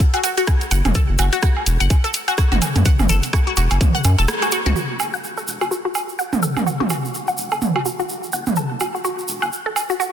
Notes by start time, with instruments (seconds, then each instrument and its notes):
0.00 kick, closed hi-hat, shaker
0.14 synth arpeggio sound F#4, closed hi-hat, low woodblock, shaker
0.23 synth arpeggio sound F#4, closed hi-hat, shaker
0.37 synth arpeggio sound F#4, closed hi-hat, shaker
0.47 kick, cross-stick, closed hi-hat, low woodblock, shaker
0.61 closed hi-hat, shaker
0.71 sub bass F#1, synth arpeggio sound F#5, closed hi-hat, shaker
0.85 sub bass E1, closed hi-hat, mid tom, low woodblock, shaker
0.95 synth arpeggio sound A4, kick, closed hi-hat, shaker
1.09 sub bass F#1
1.18 sub bass F#1, synth arpeggio sound F#4, closed hi-hat, low woodblock, shaker
1.32 synth arpeggio sound F#4, closed hi-hat, shaker
1.42 synth arpeggio sound F#4, kick, cross-stick, closed hi-hat, shaker
1.57 low woodblock
1.66 sub bass E1, closed hi-hat, shaker
1.80 sub bass F#1, synth arpeggio sound F#5, closed hi-hat, shaker
1.90 kick, closed hi-hat, low woodblock, shaker
2.04 synth arpeggio sound A4, closed hi-hat, shaker
2.14 closed hi-hat, shaker
2.28 synth arpeggio sound F#4, closed hi-hat, low woodblock, shaker
2.38 synth arpeggio sound F#4, kick, cross-stick, closed hi-hat, shaker
2.52 sub bass F#1, synth arpeggio sound F#4, closed hi-hat, mid tom, shaker
2.62 closed hi-hat, low woodblock, shaker
2.75 sub bass F#2, closed hi-hat, mid tom, shaker
2.85 synth arpeggio sound F#5, kick, closed hi-hat, shaker
2.99 sub bass F#1, mid tom, low woodblock, shaker
3.09 sub bass F#1, synth arpeggio sound A4, closed hi-hat, shaker
3.23 closed hi-hat, shaker
3.33 synth arpeggio sound F#4, kick, cross-stick, closed hi-hat, low woodblock, shaker
3.47 synth arpeggio sound F#4, closed hi-hat
3.57 sub bass E1, synth arpeggio sound F#4, closed hi-hat, shaker
3.70 sub bass F#1, closed hi-hat, low woodblock, shaker
3.81 kick, closed hi-hat, mid tom, shaker
3.95 synth arpeggio sound F#5, closed hi-hat, shaker
4.04 sub bass F#2, closed hi-hat, low woodblock, shaker
4.18 sub bass E1, synth arpeggio sound A4, closed hi-hat, shaker
4.28 cross-stick, closed hi-hat, shaker
4.42 synth arpeggio sound F#4, closed hi-hat, low woodblock, shaker
4.52 synth arpeggio sound F#4, closed hi-hat, shaker
4.65 sub bass C#2, synth arpeggio sound F#4, closed hi-hat, mid tom, shaker
4.76 synth arpeggio sound F#4, shaker
4.90 sub bass F#1
5.00 sub bass F#1, low woodblock, shaker
5.14 synth arpeggio sound F#5, shaker
5.24 shaker
5.37 synth arpeggio sound A4, shaker
5.47 sub bass E1, shaker
5.61 sub bass F#1, synth arpeggio sound F#4, low woodblock, shaker
5.71 synth arpeggio sound F#4, shaker
5.85 synth arpeggio sound F#4
5.95 low woodblock, shaker
6.09 shaker
6.19 synth arpeggio sound F#5, shaker
6.33 sub bass F#1, mid tom, shaker
6.43 synth arpeggio sound A4, shaker
6.56 sub bass F#2, mid tom, low woodblock, shaker
6.66 synth arpeggio sound F#4, shaker
6.80 sub bass F#1, synth arpeggio sound F#4, mid tom
6.90 sub bass F#1, synth arpeggio sound F#4, low woodblock, shaker
7.05 shaker
7.14 shaker
7.28 synth arpeggio sound F#5, shaker
7.38 sub bass E1, shaker
7.51 sub bass F#1, synth arpeggio sound A4, low woodblock, shaker
7.61 mid tom, shaker
7.76 synth arpeggio sound F#4, low woodblock
7.85 synth arpeggio sound F#4, shaker
7.99 synth arpeggio sound F#4, shaker
8.09 shaker
8.23 shaker
8.33 sub bass F#1, synth arpeggio sound F#5, shaker
8.46 sub bass E1, mid tom, shaker
8.56 synth arpeggio sound A4, shaker
8.71 sub bass F#1
8.80 sub bass F#1, synth arpeggio sound F#4, low woodblock, shaker
8.95 synth arpeggio sound F#4, shaker
9.04 synth arpeggio sound F#4, shaker
9.18 shaker
9.28 sub bass E1, shaker
9.42 sub bass F#1, synth arpeggio sound F#5, low woodblock, shaker
9.53 shaker
9.66 synth arpeggio sound A4
9.76 low woodblock, shaker
9.89 synth arpeggio sound F#4, shaker
10.00 synth arpeggio sound F#4, shaker